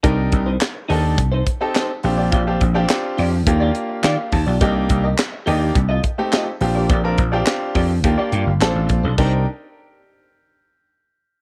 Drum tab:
CC |--------|--------|--------|--------|
HH |xxxoxxxo|xxxoxxxo|xxxoxxxo|xxxoxxxx|
CP |--x---x-|--x---x-|--x---x-|--x---x-|
SD |--o---o-|--o---o-|--o---o-|--o---o-|
BD |oo--oo--|oo--o--o|oo--oo--|oo-oo--o|

CC |x-------|
HH |--------|
CP |--------|
SD |--------|
BD |o-------|